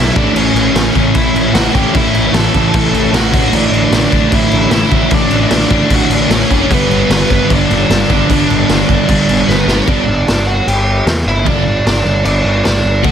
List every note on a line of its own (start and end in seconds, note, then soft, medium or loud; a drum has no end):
0.00 0.14 B2 medium
0.00 0.15 B2 medium
0.00 0.16 F#3 medium
0.00 0.16 F#3 loud
0.00 0.16 B3 loud
0.00 0.16 B3 medium
0.00 0.17 D4 loud
0.00 0.16 E4 medium
0.00 0.16 E5 loud
0.15 0.30 A1 medium
0.15 1.53 A2 medium
0.15 1.54 E3 medium
0.15 1.55 A3 loud
0.15 1.54 C#4 medium
0.15 0.35 D4 medium
0.15 1.55 E4 loud
0.15 0.36 D5 medium
0.15 kick loud
0.15 crash medium
0.34 0.48 A1 loud
0.34 0.74 C#4 medium
0.34 0.75 C#5 loud
0.34 crash medium
0.54 0.68 A1 loud
0.54 crash medium
0.74 0.88 A1 medium
0.74 1.13 C#4 medium
0.74 1.17 C#5 medium
0.74 snare loud
0.74 crash medium
0.93 1.09 A1 loud
0.93 1.72 A2 medium
0.93 1.73 E3 medium
0.93 1.75 A3 medium
0.93 kick medium
0.93 crash medium
1.15 1.29 A1 medium
1.15 1.52 E4 medium
1.15 1.54 E5 loud
1.15 kick loud
1.15 crash medium
1.34 1.48 A1 medium
1.34 crash medium
1.54 1.68 A1 loud
1.54 1.73 A2 medium
1.54 1.73 E3 medium
1.54 1.74 A3 medium
1.54 1.74 C#4 medium
1.54 1.74 E4 medium
1.54 1.74 F#4 medium
1.54 1.74 F#5 loud
1.54 snare loud
1.54 crash medium
1.73 1.88 A1 medium
1.73 3.12 A2 medium
1.73 3.12 E3 medium
1.73 3.13 A3 loud
1.73 3.13 C#4 medium
1.73 3.13 E4 loud
1.73 1.94 G4 medium
1.73 1.94 G5 loud
1.73 kick medium
1.73 crash medium
1.95 2.08 A1 loud
1.95 2.32 E4 medium
1.95 2.32 E5 loud
1.95 kick loud
1.95 crash medium
2.14 2.28 A1 medium
2.14 crash medium
2.34 2.47 A1 medium
2.34 3.10 A4 medium
2.34 3.16 A5 loud
2.34 snare loud
2.34 crash medium
2.53 2.68 A1 medium
2.53 3.31 A2 medium
2.53 3.33 E3 medium
2.53 3.34 A3 loud
2.53 kick medium
2.53 crash medium
2.74 2.87 A1 medium
2.74 kick loud
2.74 crash medium
2.93 3.07 A1 loud
2.93 crash medium
3.12 3.33 A1 loud
3.12 3.32 A2 medium
3.12 3.32 E3 medium
3.12 3.33 A3 medium
3.12 3.32 C#4 loud
3.12 3.33 E4 loud
3.12 3.51 F#4 medium
3.12 3.55 F#5 medium
3.12 snare loud
3.12 crash medium
3.32 3.47 A1 medium
3.32 4.69 A2 medium
3.32 4.70 D3 medium
3.32 4.71 A3 loud
3.32 4.72 D4 medium
3.32 4.71 F#4 loud
3.32 kick loud
3.32 crash loud
3.52 3.66 A1 loud
3.52 3.91 D4 medium
3.52 3.93 D5 medium
3.52 crash medium
3.72 3.85 A1 loud
3.72 crash medium
3.91 4.05 A1 medium
3.91 4.30 D4 medium
3.91 4.34 D5 medium
3.91 snare loud
3.91 crash medium
4.10 4.26 A1 medium
4.10 4.88 D3 medium
4.10 4.90 A3 medium
4.10 4.92 D4 medium
4.10 kick medium
4.10 crash medium
4.32 4.46 A1 medium
4.32 4.70 E4 medium
4.32 4.72 E5 loud
4.32 kick loud
4.32 crash medium
4.51 4.66 A1 loud
4.51 crash medium
4.70 4.84 A1 loud
4.70 4.89 A2 medium
4.70 4.89 D3 medium
4.70 4.90 A3 medium
4.70 4.91 D4 medium
4.70 5.09 E4 medium
4.70 4.91 F#4 loud
4.70 5.14 E5 medium
4.70 snare loud
4.70 crash medium
4.90 5.05 A1 medium
4.90 6.28 A2 medium
4.90 6.29 D3 medium
4.90 6.29 A3 loud
4.90 6.30 D4 medium
4.90 6.30 F#4 loud
4.90 kick medium
4.90 crash medium
5.11 5.25 A1 loud
5.11 5.50 D4 medium
5.11 5.53 D5 medium
5.11 kick loud
5.11 crash medium
5.31 5.44 A1 medium
5.31 crash medium
5.50 5.64 A1 medium
5.50 5.89 D4 medium
5.50 5.93 D5 medium
5.50 snare loud
5.50 crash medium
5.70 5.84 A1 medium
5.70 6.50 D3 medium
5.70 6.49 A3 medium
5.70 9.20 D4 loud
5.70 kick medium
5.70 crash medium
5.90 6.04 A1 loud
5.90 6.11 F#4 medium
5.90 kick loud
5.90 crash loud
5.95 6.13 F#5 medium
6.10 6.23 A1 loud
6.10 6.30 D4 medium
6.10 6.32 D5 medium
6.10 crash medium
6.29 6.43 A1 medium
6.29 6.48 A2 medium
6.29 6.49 D3 medium
6.29 6.49 A3 loud
6.29 6.68 C#4 medium
6.29 6.71 D4 medium
6.29 6.50 F#4 medium
6.29 snare loud
6.29 crash medium
6.34 6.73 C#5 medium
6.51 6.64 F#1 medium
6.51 kick medium
6.51 crash medium
6.69 6.84 G1 loud
6.69 8.11 G2 medium
6.69 8.08 D3 loud
6.69 8.10 G3 loud
6.69 8.09 B3 medium
6.69 7.08 B3 medium
6.69 8.08 D4 loud
6.69 kick loud
6.69 crash medium
6.73 7.11 B4 loud
6.90 7.03 G1 loud
6.90 crash medium
7.09 7.23 G1 loud
7.09 7.29 B3 medium
7.09 7.31 B4 medium
7.09 snare loud
7.09 crash loud
7.30 7.43 G1 loud
7.30 7.49 B3 medium
7.30 7.51 B4 medium
7.30 kick medium
7.30 crash medium
7.48 7.64 G1 medium
7.48 8.26 G2 medium
7.48 8.27 D3 medium
7.48 8.29 G3 medium
7.48 kick loud
7.48 crash medium
7.52 9.45 D4 medium
7.52 9.45 D5 medium
7.70 7.83 G1 loud
7.70 crash medium
7.90 8.03 G1 medium
7.90 snare loud
7.90 crash medium
8.08 8.23 G1 loud
8.08 8.28 G2 medium
8.08 8.28 D3 medium
8.08 8.29 G3 medium
8.08 8.30 B3 medium
8.08 8.31 D4 medium
8.08 kick medium
8.08 crash medium
8.28 8.43 G1 medium
8.28 9.66 G2 loud
8.28 9.66 D3 medium
8.28 9.67 G3 loud
8.28 9.66 B3 loud
8.28 9.65 D4 loud
8.28 kick loud
8.28 crash medium
8.50 8.63 G1 medium
8.50 crash medium
8.69 8.82 G1 medium
8.69 snare loud
8.69 crash medium
8.89 9.02 G1 medium
8.89 kick medium
8.89 crash medium
9.06 9.22 G1 medium
9.06 9.85 G2 medium
9.06 9.86 D3 medium
9.06 9.86 G3 medium
9.06 kick loud
9.06 crash medium
9.28 9.41 G1 loud
9.28 crash medium
9.48 9.61 G1 medium
9.48 9.78 B3 soft
9.48 9.81 B4 medium
9.48 snare medium
9.66 9.80 G1 medium
9.66 9.85 G2 medium
9.66 9.86 D3 medium
9.66 9.86 G3 medium
9.66 9.86 B3 medium
9.66 9.85 D4 medium
9.66 snare loud
9.82 9.88 C#5 medium
9.87 10.04 G1 loud
9.87 10.03 G2 medium
9.87 10.03 D3 loud
9.87 10.03 G3 loud
9.87 10.03 B3 loud
9.87 10.04 D4 loud
9.87 10.44 D4 medium
9.87 10.49 D5 medium
9.87 kick loud
9.87 crash medium
10.08 10.24 G1 medium
10.28 10.60 G1 medium
10.28 snare loud
10.28 crash medium
10.47 10.66 F#4 medium
10.47 10.67 F#5 medium
10.67 11.00 G1 medium
10.67 11.05 G4 medium
10.67 11.04 G5 loud
10.67 crash medium
11.06 11.23 E2 medium
11.06 snare loud
11.06 crash medium
11.26 11.42 G1 medium
11.26 11.46 E4 medium
11.26 11.47 E5 medium
11.45 11.79 G1 medium
11.45 11.61 G2 medium
11.45 11.62 D3 loud
11.45 11.62 G3 medium
11.45 11.62 B3 loud
11.45 11.62 D4 loud
11.45 11.84 D4 medium
11.45 11.85 D5 loud
11.45 kick loud
11.45 crash medium
11.86 12.02 G1 medium
11.86 12.23 D4 medium
11.86 12.24 D5 medium
11.86 snare loud
11.86 crash medium
12.05 12.22 G1 medium
12.25 12.42 G1 medium
12.25 12.63 D4 medium
12.25 12.63 D5 medium
12.25 crash medium
12.44 12.61 G1 loud
12.64 12.82 G1 medium
12.64 13.02 D4 medium
12.64 13.06 D5 medium
12.64 snare loud
12.64 crash medium
12.84 13.01 G1 medium
13.03 13.12 D2 loud
13.03 13.12 D3 medium
13.03 13.12 F#3 loud
13.03 13.12 A3 loud
13.03 13.12 D4 loud
13.03 13.12 F#4 medium
13.03 13.12 F#5 loud
13.03 kick loud
13.03 crash medium